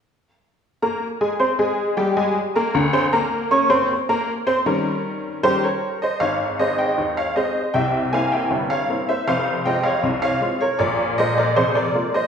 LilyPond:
<<
  \new Staff \with { instrumentName = "Honky-tonk piano" } { \time 2/4 \key aes \major \tempo 4 = 78 r4 <bes bes' bes''>8 <aes aes' aes''>16 <c' c'' c'''>16 | <aes aes' aes''>8 <g g' g''>16 <aes aes' aes''>8 <bes bes' bes''>8 <c' c'' c'''>16 | <bes bes' bes''>8 <des' des'' des'''>16 <c' c'' c'''>8 <bes bes' bes''>8 <c' c'' c'''>16 | r4 <g' c''>16 <bes' des''>8 <c'' ees''>16 |
<des'' f''>8 <c'' ees''>16 <ees'' g''>8 <des'' f''>16 <c'' ees''>8 | <e'' g''>8 <f'' aes''>16 <e'' g''>8 <des'' f''>8 <c'' e''>16 | <c'' f''>8 <ees'' g''>16 <des'' f''>8 <des'' f''>8 <bes' des''>16 | <bes' d''>8 <c'' ees''>16 <bes' d''>16 <aes' c''>16 <bes' d''>8 <c'' ees''>16 | }
  \new Staff \with { instrumentName = "Honky-tonk piano" } { \clef bass \time 2/4 \key aes \major r2 | r4. <d, d>8 | r2 | <ees g des' bes'>8 r8 <ees g des' bes'>8 r8 |
<aes,, aes,>8 <aes c' aes'>8 <ees, ees>8 <aes c' aes'>8 | <c, c>8 <bes c' e'>8 <g,, g,>8 <bes c' e'>8 | <f,, f,>8 <aes c' f'>8 <c, c>8 <aes c' f'>8 | <bes,, bes,>8 <aes bes f'>8 <f,, f,>8 <aes bes f'>8 | }
>>